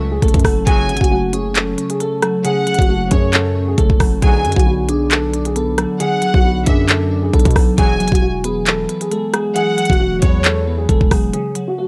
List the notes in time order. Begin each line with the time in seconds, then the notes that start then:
Already playing: C#2 C#3 F#3 A3
0.00 C#4
0.12 G#4
0.22 F#1 A3 A4, kick, closed hi-hat
0.28 closed hi-hat
0.34 F#2, kick, closed hi-hat
0.39 closed hi-hat
0.44 F#1 F#3 A4, kick, cross-stick, open hi-hat
0.67 F#1 C#2 A2 C#3 F#3 G#4 G#5, kick, closed hi-hat
0.89 G#1 F#3, closed hi-hat
0.97 closed hi-hat
1.01 F#1 F#4, kick, closed hi-hat
1.11 A3 F#4
1.33 C#4 G#4, closed hi-hat
1.55 A4, clap, closed hi-hat
1.78 C#4, closed hi-hat
1.90 G#4, closed hi-hat
2.00 A3 A4, closed hi-hat
2.22 F#3 A4, cross-stick, closed hi-hat
2.44 C#3 G#4 F#5, closed hi-hat
2.67 F#3, closed hi-hat
2.74 closed hi-hat
2.79 F#1 F#4, kick, closed hi-hat
2.89 A3 F#4
3.11 F#2 C#4 G#4 C#5, kick, closed hi-hat
3.33 A4, clap, closed hi-hat
3.55 C#4
3.68 G#4
3.78 F#1 A3 A4, kick, closed hi-hat
3.90 F#1, kick
4.00 F#1 F#3 A4, kick, cross-stick, open hi-hat
4.22 B1 D2 B2 D3 F#3 G#4 G#5, kick, closed hi-hat
4.45 F#2 F#3, closed hi-hat
4.52 closed hi-hat
4.56 B1 F#4, kick, closed hi-hat
4.66 B3 F#4
4.89 D4 G#4, closed hi-hat
5.11 A4, clap, closed hi-hat
5.34 D4, closed hi-hat
5.45 G#4, closed hi-hat
5.56 B3 A4, closed hi-hat
5.78 F#3 A4, cross-stick, closed hi-hat
6.00 D3 G#4 F#5, closed hi-hat
6.22 F#3, closed hi-hat
6.34 B1 F#4, kick
6.44 B3 F#4
6.66 F#2 D4 G#4 E5, kick, closed hi-hat
6.89 A4, clap, closed hi-hat
7.11 D4
7.23 G#4
7.33 B1 B3 A4, kick, closed hi-hat
7.39 closed hi-hat
7.45 B2, kick, closed hi-hat
7.50 closed hi-hat
7.55 B1 F#3 A4, kick, cross-stick, open hi-hat
7.77 E1 B1 G#2 E3 F#3 G#4 G#5, kick, closed hi-hat
8.00 F#1 F#3, closed hi-hat
8.08 closed hi-hat
8.12 E1 F#4, kick, closed hi-hat
8.22 F#4
8.44 B3 G#4, closed hi-hat
8.66 A4, clap, closed hi-hat
8.89 B3, closed hi-hat
9.01 G#4, closed hi-hat
9.11 G#3 A4, closed hi-hat
9.33 F#3 G#4, cross-stick, closed hi-hat
9.55 E3 G#4 F#5, closed hi-hat
9.78 F#3, closed hi-hat
9.85 closed hi-hat
9.90 E1 F#4, kick, closed hi-hat
10.00 F#4
10.22 E2 B3 G#4 C#5, kick, closed hi-hat
10.44 A4, clap, closed hi-hat
10.67 B3
10.78 G#4
10.89 E1 G#3 A4, kick, closed hi-hat
11.01 E1, kick
11.11 E1 F#3 G#4, kick, cross-stick, open hi-hat
11.33 C#3 G#4, closed hi-hat
11.55 F#3, closed hi-hat
11.68 F#4
11.78 A3 F#4